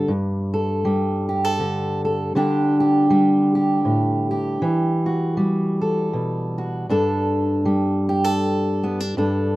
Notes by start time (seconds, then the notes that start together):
Already playing: G3 A4
0.08 G2
0.54 A4
0.85 G3
1.29 G4
1.45 A4
1.60 D3
2.05 A4
2.35 D3 G3 D4 G4
2.80 G4
3.10 G3
3.55 G4
3.85 A2
4.31 G4
4.62 E3
5.06 F#4
5.37 G3
5.81 A4
6.13 B2
6.58 F#4
6.89 G2 D4 A4
7.65 G3
8.09 G4
8.24 A4
8.83 B3
9.00 D4
9.17 G2 D4 A4